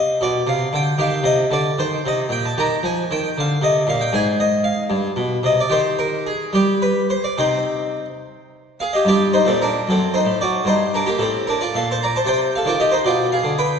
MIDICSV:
0, 0, Header, 1, 2, 480
1, 0, Start_track
1, 0, Key_signature, -3, "minor"
1, 0, Tempo, 526316
1, 908, Time_signature, 6, 3, 24, 8
1, 5211, Tempo, 554017
1, 8101, Key_signature, -2, "minor"
1, 8571, Tempo, 530504
1, 12371, End_track
2, 0, Start_track
2, 0, Title_t, "Harpsichord"
2, 0, Program_c, 0, 6
2, 0, Note_on_c, 0, 67, 44
2, 0, Note_on_c, 0, 75, 94
2, 134, Note_off_c, 0, 67, 0
2, 180, Note_off_c, 0, 75, 0
2, 192, Note_on_c, 0, 47, 56
2, 207, Note_on_c, 0, 74, 88
2, 362, Note_off_c, 0, 47, 0
2, 426, Note_on_c, 0, 48, 65
2, 436, Note_off_c, 0, 74, 0
2, 446, Note_on_c, 0, 77, 88
2, 600, Note_off_c, 0, 48, 0
2, 643, Note_off_c, 0, 77, 0
2, 665, Note_on_c, 0, 50, 58
2, 687, Note_on_c, 0, 79, 97
2, 841, Note_off_c, 0, 50, 0
2, 897, Note_on_c, 0, 51, 70
2, 899, Note_on_c, 0, 67, 46
2, 918, Note_on_c, 0, 77, 111
2, 920, Note_off_c, 0, 79, 0
2, 1074, Note_off_c, 0, 51, 0
2, 1123, Note_on_c, 0, 48, 60
2, 1142, Note_on_c, 0, 75, 102
2, 1154, Note_off_c, 0, 77, 0
2, 1304, Note_off_c, 0, 48, 0
2, 1375, Note_on_c, 0, 50, 70
2, 1384, Note_off_c, 0, 75, 0
2, 1396, Note_on_c, 0, 74, 104
2, 1551, Note_off_c, 0, 50, 0
2, 1628, Note_on_c, 0, 51, 65
2, 1630, Note_off_c, 0, 74, 0
2, 1637, Note_on_c, 0, 72, 98
2, 1798, Note_off_c, 0, 51, 0
2, 1870, Note_off_c, 0, 72, 0
2, 1876, Note_on_c, 0, 48, 67
2, 1896, Note_on_c, 0, 75, 96
2, 2042, Note_off_c, 0, 48, 0
2, 2091, Note_on_c, 0, 46, 69
2, 2115, Note_on_c, 0, 79, 95
2, 2117, Note_off_c, 0, 75, 0
2, 2227, Note_off_c, 0, 79, 0
2, 2239, Note_on_c, 0, 81, 92
2, 2266, Note_off_c, 0, 46, 0
2, 2298, Note_off_c, 0, 67, 0
2, 2349, Note_off_c, 0, 81, 0
2, 2349, Note_on_c, 0, 51, 71
2, 2353, Note_on_c, 0, 67, 49
2, 2371, Note_on_c, 0, 82, 111
2, 2519, Note_off_c, 0, 51, 0
2, 2562, Note_off_c, 0, 82, 0
2, 2583, Note_on_c, 0, 53, 66
2, 2603, Note_on_c, 0, 80, 93
2, 2755, Note_off_c, 0, 53, 0
2, 2832, Note_off_c, 0, 80, 0
2, 2835, Note_on_c, 0, 51, 70
2, 2846, Note_on_c, 0, 79, 104
2, 3003, Note_off_c, 0, 51, 0
2, 3074, Note_off_c, 0, 79, 0
2, 3080, Note_on_c, 0, 50, 61
2, 3102, Note_on_c, 0, 77, 95
2, 3246, Note_off_c, 0, 50, 0
2, 3298, Note_on_c, 0, 48, 58
2, 3315, Note_on_c, 0, 75, 87
2, 3321, Note_off_c, 0, 77, 0
2, 3470, Note_off_c, 0, 48, 0
2, 3529, Note_on_c, 0, 46, 64
2, 3546, Note_off_c, 0, 75, 0
2, 3553, Note_on_c, 0, 77, 106
2, 3657, Note_on_c, 0, 79, 93
2, 3664, Note_off_c, 0, 77, 0
2, 3702, Note_off_c, 0, 46, 0
2, 3744, Note_off_c, 0, 67, 0
2, 3763, Note_on_c, 0, 68, 46
2, 3766, Note_on_c, 0, 44, 69
2, 3774, Note_off_c, 0, 79, 0
2, 3784, Note_on_c, 0, 80, 98
2, 3979, Note_off_c, 0, 80, 0
2, 4014, Note_on_c, 0, 75, 85
2, 4213, Note_off_c, 0, 75, 0
2, 4233, Note_on_c, 0, 77, 76
2, 4282, Note_off_c, 0, 44, 0
2, 4443, Note_off_c, 0, 77, 0
2, 4445, Note_off_c, 0, 68, 0
2, 4467, Note_on_c, 0, 43, 56
2, 4648, Note_off_c, 0, 43, 0
2, 4709, Note_on_c, 0, 47, 57
2, 4890, Note_off_c, 0, 47, 0
2, 4956, Note_on_c, 0, 48, 60
2, 4977, Note_on_c, 0, 75, 97
2, 5095, Note_off_c, 0, 75, 0
2, 5111, Note_on_c, 0, 74, 69
2, 5136, Note_off_c, 0, 48, 0
2, 5193, Note_on_c, 0, 67, 41
2, 5197, Note_on_c, 0, 51, 63
2, 5215, Note_on_c, 0, 72, 102
2, 5222, Note_off_c, 0, 74, 0
2, 5447, Note_off_c, 0, 72, 0
2, 5448, Note_on_c, 0, 70, 81
2, 5683, Note_off_c, 0, 70, 0
2, 5690, Note_on_c, 0, 68, 83
2, 5712, Note_off_c, 0, 51, 0
2, 5875, Note_off_c, 0, 67, 0
2, 5888, Note_off_c, 0, 68, 0
2, 5917, Note_on_c, 0, 55, 56
2, 5932, Note_on_c, 0, 67, 81
2, 6164, Note_off_c, 0, 67, 0
2, 6171, Note_on_c, 0, 71, 73
2, 6370, Note_off_c, 0, 71, 0
2, 6413, Note_on_c, 0, 72, 76
2, 6439, Note_off_c, 0, 55, 0
2, 6528, Note_off_c, 0, 72, 0
2, 6535, Note_on_c, 0, 74, 64
2, 6651, Note_off_c, 0, 74, 0
2, 6653, Note_on_c, 0, 48, 43
2, 6657, Note_on_c, 0, 63, 36
2, 6658, Note_on_c, 0, 60, 34
2, 6669, Note_on_c, 0, 72, 72
2, 7161, Note_off_c, 0, 48, 0
2, 7236, Note_off_c, 0, 63, 0
2, 7237, Note_off_c, 0, 60, 0
2, 7874, Note_off_c, 0, 72, 0
2, 7888, Note_on_c, 0, 77, 67
2, 7899, Note_on_c, 0, 68, 54
2, 7994, Note_off_c, 0, 68, 0
2, 7996, Note_off_c, 0, 77, 0
2, 7999, Note_on_c, 0, 75, 46
2, 8017, Note_on_c, 0, 67, 39
2, 8102, Note_on_c, 0, 43, 45
2, 8109, Note_off_c, 0, 75, 0
2, 8111, Note_off_c, 0, 67, 0
2, 8128, Note_on_c, 0, 74, 78
2, 8131, Note_on_c, 0, 67, 59
2, 8316, Note_off_c, 0, 74, 0
2, 8335, Note_off_c, 0, 67, 0
2, 8348, Note_on_c, 0, 72, 69
2, 8353, Note_on_c, 0, 63, 49
2, 8383, Note_off_c, 0, 43, 0
2, 8451, Note_on_c, 0, 46, 42
2, 8454, Note_off_c, 0, 63, 0
2, 8459, Note_off_c, 0, 72, 0
2, 8465, Note_on_c, 0, 69, 64
2, 8473, Note_on_c, 0, 60, 45
2, 8573, Note_off_c, 0, 60, 0
2, 8577, Note_off_c, 0, 69, 0
2, 8593, Note_on_c, 0, 70, 67
2, 8606, Note_on_c, 0, 62, 56
2, 8742, Note_off_c, 0, 46, 0
2, 8818, Note_off_c, 0, 62, 0
2, 8827, Note_off_c, 0, 70, 0
2, 8829, Note_on_c, 0, 42, 43
2, 8851, Note_on_c, 0, 69, 66
2, 8856, Note_on_c, 0, 60, 52
2, 9044, Note_off_c, 0, 69, 0
2, 9064, Note_off_c, 0, 60, 0
2, 9066, Note_on_c, 0, 72, 61
2, 9078, Note_on_c, 0, 63, 52
2, 9116, Note_off_c, 0, 42, 0
2, 9171, Note_on_c, 0, 45, 42
2, 9270, Note_off_c, 0, 72, 0
2, 9295, Note_off_c, 0, 63, 0
2, 9313, Note_on_c, 0, 74, 69
2, 9328, Note_on_c, 0, 66, 51
2, 9466, Note_off_c, 0, 45, 0
2, 9514, Note_off_c, 0, 74, 0
2, 9529, Note_on_c, 0, 43, 52
2, 9541, Note_off_c, 0, 66, 0
2, 9545, Note_on_c, 0, 72, 79
2, 9552, Note_on_c, 0, 63, 56
2, 9771, Note_off_c, 0, 63, 0
2, 9784, Note_off_c, 0, 72, 0
2, 9794, Note_on_c, 0, 70, 67
2, 9804, Note_on_c, 0, 62, 49
2, 9902, Note_on_c, 0, 67, 60
2, 9905, Note_off_c, 0, 62, 0
2, 9908, Note_off_c, 0, 70, 0
2, 9917, Note_off_c, 0, 43, 0
2, 9919, Note_on_c, 0, 58, 44
2, 10012, Note_on_c, 0, 45, 47
2, 10021, Note_off_c, 0, 67, 0
2, 10022, Note_off_c, 0, 58, 0
2, 10023, Note_on_c, 0, 69, 73
2, 10040, Note_on_c, 0, 60, 52
2, 10253, Note_off_c, 0, 60, 0
2, 10260, Note_off_c, 0, 69, 0
2, 10275, Note_on_c, 0, 70, 71
2, 10291, Note_on_c, 0, 62, 56
2, 10386, Note_off_c, 0, 70, 0
2, 10387, Note_off_c, 0, 62, 0
2, 10396, Note_on_c, 0, 74, 59
2, 10397, Note_off_c, 0, 45, 0
2, 10406, Note_on_c, 0, 65, 46
2, 10504, Note_off_c, 0, 65, 0
2, 10507, Note_off_c, 0, 74, 0
2, 10518, Note_on_c, 0, 46, 40
2, 10528, Note_on_c, 0, 77, 68
2, 10540, Note_on_c, 0, 69, 51
2, 10632, Note_off_c, 0, 69, 0
2, 10633, Note_off_c, 0, 77, 0
2, 10670, Note_on_c, 0, 81, 68
2, 10676, Note_on_c, 0, 72, 55
2, 10761, Note_off_c, 0, 72, 0
2, 10764, Note_off_c, 0, 81, 0
2, 10778, Note_on_c, 0, 82, 73
2, 10791, Note_on_c, 0, 74, 61
2, 10879, Note_off_c, 0, 74, 0
2, 10879, Note_off_c, 0, 82, 0
2, 10891, Note_on_c, 0, 81, 68
2, 10895, Note_off_c, 0, 46, 0
2, 10904, Note_on_c, 0, 72, 52
2, 10979, Note_on_c, 0, 48, 49
2, 10991, Note_on_c, 0, 79, 90
2, 10996, Note_off_c, 0, 72, 0
2, 10996, Note_off_c, 0, 81, 0
2, 11006, Note_on_c, 0, 72, 59
2, 11219, Note_off_c, 0, 72, 0
2, 11228, Note_off_c, 0, 79, 0
2, 11252, Note_on_c, 0, 77, 72
2, 11267, Note_on_c, 0, 69, 53
2, 11269, Note_off_c, 0, 48, 0
2, 11340, Note_on_c, 0, 51, 43
2, 11356, Note_on_c, 0, 74, 58
2, 11357, Note_off_c, 0, 77, 0
2, 11358, Note_off_c, 0, 69, 0
2, 11369, Note_on_c, 0, 65, 51
2, 11468, Note_off_c, 0, 65, 0
2, 11469, Note_off_c, 0, 74, 0
2, 11473, Note_on_c, 0, 75, 74
2, 11476, Note_on_c, 0, 67, 57
2, 11578, Note_on_c, 0, 72, 60
2, 11580, Note_off_c, 0, 67, 0
2, 11586, Note_off_c, 0, 75, 0
2, 11595, Note_on_c, 0, 63, 50
2, 11626, Note_off_c, 0, 51, 0
2, 11698, Note_off_c, 0, 63, 0
2, 11698, Note_off_c, 0, 72, 0
2, 11698, Note_on_c, 0, 47, 45
2, 11706, Note_on_c, 0, 74, 67
2, 11719, Note_on_c, 0, 65, 53
2, 11904, Note_off_c, 0, 74, 0
2, 11929, Note_off_c, 0, 65, 0
2, 11947, Note_on_c, 0, 77, 73
2, 11957, Note_on_c, 0, 68, 54
2, 11982, Note_off_c, 0, 47, 0
2, 12050, Note_on_c, 0, 50, 49
2, 12143, Note_off_c, 0, 77, 0
2, 12167, Note_off_c, 0, 68, 0
2, 12184, Note_on_c, 0, 79, 74
2, 12186, Note_on_c, 0, 71, 61
2, 12336, Note_off_c, 0, 50, 0
2, 12371, Note_off_c, 0, 71, 0
2, 12371, Note_off_c, 0, 79, 0
2, 12371, End_track
0, 0, End_of_file